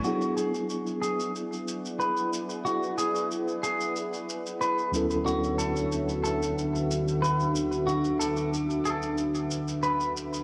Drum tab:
SH |xxxxxxxxxxxxxxxx|xxxxxxxxxxxxxxxx|xxxxxxxxxxxxxxxx|xxxxxxxxxxxxxxxx|